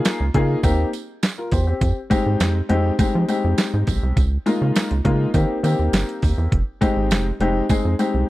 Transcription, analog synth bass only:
0.20 C#2
0.34 C#3
0.63 D#2
1.52 E2
1.81 F2
2.26 G#2
2.40 F2
2.70 F2
2.99 F3
3.15 F3
3.44 F2
3.74 G#2
3.88 B1
4.03 C2
4.17 C#2
4.62 C#3
4.91 C#2
5.05 C#3
5.34 D#3
5.64 D#3
5.79 D#2
5.93 G1
6.23 D#2
6.38 E2
6.52 F1
6.96 G#1
7.10 F1
7.40 F1
7.70 F2
7.85 F2
8.14 C2

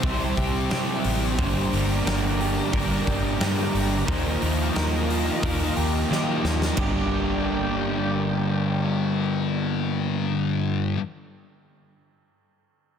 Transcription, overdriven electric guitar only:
0.02 C3 G3 C4 E4
0.70 C3 G3 C4 E4
1.37 G2 D3 G3 A#3 D4
1.71 G3 A#3 D4
2.05 D3 G3 A#3 D4
2.72 G2 D3 G3 A#3 D4
3.39 D3 G3 A#3 D4
4.06 D#3 F3 A#3 D#4
4.41 F3 A#3 D#4
4.74 D#3 F3 A#3 D#4
5.43 D#3 F3 A#3 D#4
6.10 D#3 F3 A#3 D#4
6.76 G2 D3 G3 A#3
6.80 D4

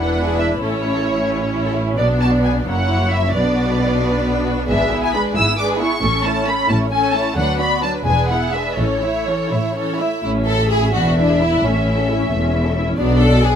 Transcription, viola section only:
Already playing: D4 E4
0.62 C#4
1.99 B3 D4
2.68 A#3 E4
3.35 B3 D4
4.68 G#3 D4
4.92 B3 E4
5.15 G#3 D4
5.36 B3 E4
5.59 G#3 D4
5.80 B3 E4
6.03 A3 C#4
6.24 A3 C#4
6.47 A3 C#4
6.69 A3 C#4
6.92 A3 C#4
7.15 A3 C#4
7.37 F#3 D4
7.59 B3
7.83 F#3 D4
8.05 G#3 D4
8.30 B3 E4
8.53 G#3 D4
8.77 E3 C#4
9.02 A3 E4
9.27 E3 C#4
9.51 A3 E4
9.75 E3 C#4
10.00 A3 E4
10.24 A3 C#4
10.36 C#4
10.48 E4
10.59 A4
10.71 E4
10.83 C#4
10.95 B3 D4
11.06 D4
11.17 E4
11.29 G#4
11.41 E4
11.52 D4
11.63 A3 C#4
11.75 C#4
11.86 E4
11.97 A4
12.09 E4
12.19 C#4
12.31 A3
12.42 C#4
12.54 E4
12.65 A4
12.75 E4
12.87 C#4
12.99 F#3 B3
13.11 B3
13.21 D4
13.33 F#4
13.44 D4

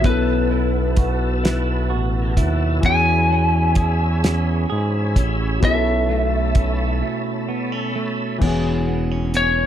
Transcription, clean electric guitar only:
Already playing: E3 C#4 G#4
0.04 B2
0.51 E4
0.98 F#4
1.44 E4
1.90 F#4
2.37 E4
2.84 E3
3.30 C#4
3.77 G#4
4.24 C#4
4.70 G#4
5.16 C#4
5.62 B2
6.09 A3
6.55 C#4
7.02 A3
7.49 B3
7.72 C#4
7.95 A3
8.41 E3 G#4
8.88 B3
9.11 C#4
9.35 B3

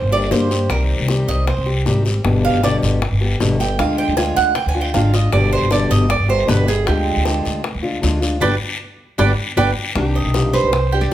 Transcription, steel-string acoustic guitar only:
0.12 A#3 D4 G4
0.31 D3 G3 A#3 D4 G4
0.50 A#3 D4 G4
0.70 C3 D#3 G3 C4 G4
1.08 C3 D#3 G3 C4 G4
1.47 muted steel-string acoustic guitar stroke
1.66 G3 C4 G4
1.85 C3 D#3 G3 C4 G4
2.05 G3 C4 G4
2.24 B2 D3 G3 B3 G4
2.62 B2 D3 G3 B3 G4
3.02 muted steel-string acoustic guitar stroke
3.21 G3 B3 G4
3.40 B2 D3 G3 B3 G4
3.59 G3 B3 G4
3.78 D3 G#3 D4 F4
4.16 D3 G#3 D4 F4
4.55 muted steel-string acoustic guitar stroke
4.74 G#3 D4 F4
4.94 D3 G#3 D4 F4
5.13 G#3 D4 F4
5.32 B2 D3 G3 B3 G4
5.70 B2 D3 G3 B3 G4
6.09 muted steel-string acoustic guitar stroke
6.28 G3 B3 G4
6.46 B2 D3 G3 B3 G4
6.66 G3 B3 G4
6.85 D3 G#3 D4 F4
7.25 D3 G#3 D4 F4
7.64 muted steel-string acoustic guitar stroke
7.82 G#3 D4 F4
8.01 D3 G#3 D4 F4
8.21 G#3 D4 F4
8.40 D3 G3 B3
9.18 D3 G3 B3
9.57 D3 G3 B3
9.95 C3 D#3 G3 D4 G4
10.34 C3 D#3 G3 D4 G4
10.73 muted steel-string acoustic guitar stroke
10.92 G3 D4 G4

